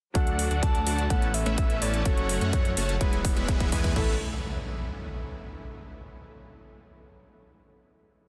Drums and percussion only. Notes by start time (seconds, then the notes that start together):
0.15 kick, closed hi-hat
0.27 closed hi-hat
0.39 open hi-hat
0.51 closed hi-hat
0.63 kick, closed hi-hat
0.75 closed hi-hat
0.87 open hi-hat
0.98 closed hi-hat
1.10 kick, closed hi-hat
1.22 closed hi-hat
1.34 open hi-hat
1.46 closed hi-hat
1.58 kick, closed hi-hat
1.70 closed hi-hat
1.82 open hi-hat
1.94 closed hi-hat
2.05 kick, closed hi-hat
2.17 closed hi-hat
2.29 open hi-hat
2.41 closed hi-hat
2.53 kick, closed hi-hat
2.65 closed hi-hat
2.77 open hi-hat
2.89 closed hi-hat
3.01 kick, closed hi-hat
3.13 closed hi-hat
3.25 kick, open hi-hat
3.37 closed hi-hat
3.48 kick, closed hi-hat
3.60 kick, closed hi-hat
3.72 kick, open hi-hat
3.84 kick, closed hi-hat
3.96 kick, crash